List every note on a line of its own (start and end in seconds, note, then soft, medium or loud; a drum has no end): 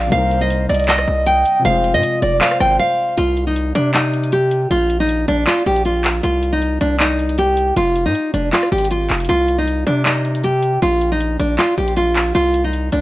0.00 0.13 D3 medium
0.00 0.14 F3 medium
0.00 0.12 A#3 medium
0.00 0.10 F4 medium
0.00 0.12 A#4 medium
0.07 1.58 C3 medium
0.07 1.61 G3 medium
0.12 0.67 C2 loud
0.12 1.62 A#3 medium
0.12 1.63 D#4 medium
0.12 0.66 C5 loud
0.12 0.39 F5 loud
0.12 closed hi-hat medium
0.18 1.65 A#4 medium
0.31 closed hi-hat medium
0.41 0.68 D#5 medium
0.41 closed hi-hat medium
0.50 closed hi-hat medium
0.69 1.06 C2 loud
0.69 0.84 D5 medium
0.69 1.61 D#5 medium
0.69 closed hi-hat medium
0.74 closed hi-hat medium
0.79 closed hi-hat medium
0.84 closed hi-hat soft
0.88 1.24 D#5 medium
0.88 clap loud
0.88 closed hi-hat medium
0.99 cross-stick medium
1.08 1.44 C2 loud
1.26 1.63 G5 medium
1.26 closed hi-hat medium
1.45 closed hi-hat medium
1.59 3.12 C3 medium
1.59 3.13 F3 medium
1.65 1.96 F1 loud
1.65 3.15 G#3 medium
1.65 3.16 F4 medium
1.65 2.01 C5 loud
1.65 1.92 F5 loud
1.65 closed hi-hat medium
1.70 3.17 G#4 medium
1.84 closed hi-hat soft
1.94 2.03 G#2 loud
1.94 2.21 D#5 medium
1.94 closed hi-hat medium
2.03 2.21 D#5 medium
2.03 closed hi-hat medium
2.22 2.41 F1 loud
2.22 2.37 D5 medium
2.22 2.40 D5 medium
2.22 closed hi-hat medium
2.41 3.14 C5 medium
2.41 2.56 F5 medium
2.41 clap loud
2.41 closed hi-hat medium
2.51 cross-stick medium
2.60 2.79 G#1 loud
2.60 2.75 G5 medium
2.60 cross-stick medium
2.79 3.15 F5 medium
3.17 3.73 C2 loud
3.17 3.45 F4 loud
3.17 closed hi-hat medium
3.37 closed hi-hat medium
3.47 3.73 D#4 medium
3.56 closed hi-hat medium
3.75 4.67 C3 loud
3.75 3.90 D4 medium
3.75 closed hi-hat medium
3.94 4.30 D#4 medium
3.94 clap loud
3.94 closed hi-hat medium
4.13 closed hi-hat soft
4.24 closed hi-hat medium
4.32 4.68 G4 medium
4.32 closed hi-hat medium
4.51 closed hi-hat medium
4.71 5.26 A#1 loud
4.71 4.98 F4 medium
4.71 closed hi-hat medium
4.90 closed hi-hat medium
5.00 5.26 D#4 medium
5.09 closed hi-hat medium
5.28 5.46 A#1 loud
5.28 5.43 D4 medium
5.28 closed hi-hat medium
5.47 5.62 F4 loud
5.47 clap loud
5.47 closed hi-hat medium
5.66 6.21 A#1 loud
5.66 5.81 G4 medium
5.66 closed hi-hat soft
5.76 closed hi-hat medium
5.85 6.21 F4 medium
5.85 closed hi-hat medium
6.04 clap medium
6.04 open hi-hat medium
6.23 6.79 C2 loud
6.23 6.51 F4 loud
6.23 closed hi-hat medium
6.43 closed hi-hat medium
6.53 6.79 D#4 medium
6.62 closed hi-hat medium
6.81 7.73 C2 loud
6.81 6.96 D4 medium
6.81 closed hi-hat medium
7.00 7.36 D#4 medium
7.00 clap loud
7.00 closed hi-hat medium
7.19 closed hi-hat soft
7.29 closed hi-hat medium
7.38 7.74 G4 medium
7.38 closed hi-hat medium
7.57 closed hi-hat medium
7.76 8.07 F1 loud
7.76 8.04 F4 loud
7.76 closed hi-hat medium
7.96 closed hi-hat medium
8.06 8.14 G#2 loud
8.06 8.32 D#4 medium
8.15 closed hi-hat medium
8.34 8.52 F1 loud
8.34 8.48 D4 medium
8.34 closed hi-hat medium
8.53 8.68 F4 medium
8.53 clap loud
8.53 closed hi-hat medium
8.63 cross-stick medium
8.72 9.09 G#1 loud
8.72 8.87 G4 medium
8.72 closed hi-hat medium
8.78 closed hi-hat medium
8.85 closed hi-hat medium
8.91 9.27 F4 medium
8.91 closed hi-hat medium
9.10 9.29 F1 loud
9.10 clap medium
9.10 closed hi-hat soft
9.10 open hi-hat medium
9.15 closed hi-hat medium
9.20 closed hi-hat medium
9.25 closed hi-hat medium
9.29 9.84 C2 loud
9.29 9.57 F4 loud
9.29 closed hi-hat medium
9.48 closed hi-hat medium
9.58 9.85 D#4 medium
9.68 closed hi-hat medium
9.87 10.78 C3 loud
9.87 10.01 D4 medium
9.87 closed hi-hat medium
10.06 10.42 D#4 medium
10.06 clap loud
10.06 closed hi-hat medium
10.25 closed hi-hat soft
10.35 closed hi-hat medium
10.44 10.80 G4 medium
10.44 closed hi-hat medium
10.63 closed hi-hat medium
10.82 11.37 A#1 loud
10.82 11.10 F4 loud
10.82 closed hi-hat medium
11.01 closed hi-hat medium
11.12 11.38 D#4 medium
11.21 closed hi-hat medium
11.39 11.58 A#1 loud
11.39 11.54 D4 medium
11.39 closed hi-hat medium
11.59 11.73 F4 loud
11.59 clap loud
11.59 closed hi-hat medium
11.78 12.33 A#1 loud
11.78 11.92 G4 medium
11.78 closed hi-hat soft
11.88 closed hi-hat medium
11.96 12.33 F4 medium
11.96 closed hi-hat medium
12.15 clap medium
12.15 open hi-hat medium
12.35 12.90 C2 loud
12.35 12.62 F4 loud
12.35 closed hi-hat medium
12.54 closed hi-hat medium
12.64 12.91 D#4 medium
12.73 closed hi-hat medium
12.92 13.01 C2 loud
12.92 13.01 D4 medium
12.92 closed hi-hat medium